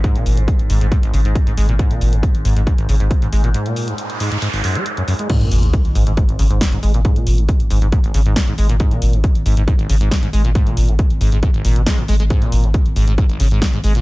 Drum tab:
CC |----------------|----------------|----------------|x---------------|
HH |xxoxxxoxxxoxxxox|xxoxxxoxxxoxxxox|xxoxxxoxxooxxxox|xxoxxxoxxxoxxxox|
SD |----------------|----------------|----------------|------------o---|
BD |o---o---o---o---|o---o---o---o---|----------------|o---o---o---o---|

CC |----------------|----------------|----------------|----------------|
HH |xxoxxxoxxxoxxxox|xxoxxxoxxxoxxxox|xxoxxxoxxxoxxxox|xxoxxxoxxxoxxxox|
SD |------------o---|------------o---|------------o---|------------o---|
BD |o---o---o---o---|o---o---o---o---|o---o---o---o---|o---o---o---o---|